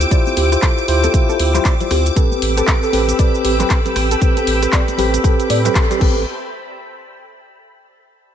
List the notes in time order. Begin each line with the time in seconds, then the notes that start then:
Already playing: G5 D6 E6
0.01 closed hi-hat, muted conga, shaker
0.11 E4 F4 G4 C5 D5, kick, closed hi-hat, shaker
0.27 high conga, shaker
0.37 D2 G4, open hi-hat, muted conga
0.52 E4 F4 G4 C5, cross-stick, closed hi-hat, shaker
0.62 A4, kick, clap, closed hi-hat, muted conga, high conga, shaker
0.78 shaker
0.88 D2 E4 F4 G4 C5, open hi-hat
1.04 A4, closed hi-hat, muted conga, high conga, shaker
1.13 E4 F4 G4 C5, kick, closed hi-hat, shaker
1.29 A4, muted conga, shaker
1.39 D2, open hi-hat, high conga
1.54 E4 F4 G4 C5, clap, closed hi-hat, low conga, shaker
1.65 D5, kick, clap, closed hi-hat, muted conga, shaker
1.80 E4 F4 G4 C5, closed hi-hat, low conga, shaker
1.91 D2 G4, cross-stick, open hi-hat, muted conga, high conga
2.06 closed hi-hat, shaker
2.16 C4 G4 A4 B4 G5 B5 E6, kick, closed hi-hat, shaker
2.32 muted conga, high conga, shaker
2.42 A1, open hi-hat
2.57 C4 G4 A4 B4, cross-stick, closed hi-hat, muted conga, shaker
2.67 kick, clap, closed hi-hat, high conga, shaker
2.83 A4, shaker
2.93 A1 C4 G4 A4 B4, open hi-hat, muted conga
3.08 closed hi-hat, high conga, shaker
3.18 C4 G4 A4 B4 D5, kick, closed hi-hat, muted conga, shaker
3.35 shaker
3.44 A1 G4, open hi-hat, high conga
3.59 C4 G4 A4 B4, clap, closed hi-hat, muted conga, low conga, shaker
3.70 A4, kick, clap, closed hi-hat, shaker
3.85 C4 G4 A4 B4, closed hi-hat, muted conga, low conga, shaker
3.96 A1, cross-stick, open hi-hat, high conga
4.11 A4, closed hi-hat, shaker
4.21 C4 G4 A4 B4, kick, closed hi-hat, muted conga, shaker
4.37 A4, closed hi-hat, high conga, shaker
4.47 A1, open hi-hat, muted conga
4.62 C4 G4 A4 B4, cross-stick, closed hi-hat, shaker
4.73 D5, kick, clap, closed hi-hat, high conga, shaker
4.88 closed hi-hat, muted conga, shaker
4.98 A1 C4 G4 A4 B4, open hi-hat, low conga
5.14 closed hi-hat, muted conga, high conga, shaker
5.23 C4 G4 A4 B4, kick, cross-stick, closed hi-hat, shaker
5.40 closed hi-hat, shaker
5.50 A2 D5, open hi-hat, muted conga, high conga
5.64 C4 G4 A4 B4, clap, closed hi-hat, low conga, shaker
5.75 A4, kick, clap, closed hi-hat, muted conga, shaker
5.90 C4 G4 A4 B4, closed hi-hat, low conga, shaker
5.99 A1 C4 G4 A4 B4, kick, crash, high conga
6.16 muted conga